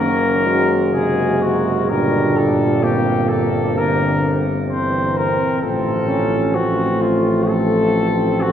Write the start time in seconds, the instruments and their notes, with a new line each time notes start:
Already playing: tuba F#1, trombone C#3, flugelhorn A#3, trombone section C#4, cornet A#4
0.45 flugelhorn G#3, trombone section F#4
0.93 trombone C3, flugelhorn G#3, cornet G#4
1.42 cornet F#4
1.89 tuba G1, trombone A#2, flugelhorn G3, trombone section D4, cornet A#4
2.37 cornet A4
2.83 flugelhorn A#3, trombone section C4, cornet G4
3.29 cornet A4
3.77 trombone D3, cornet A#4
4.69 trombone E3, flugelhorn C4, cornet C5
5.17 cornet A#4
5.62 tuba A1, trombone F3, flugelhorn C4, cornet A4
6.07 flugelhorn C#4
6.55 trombone section F3, trombone A3, flugelhorn C4, cornet F#4
7.01 cornet F4
7.49 flugelhorn C4, cornet A4
8.41 trombone A3, cornet F#4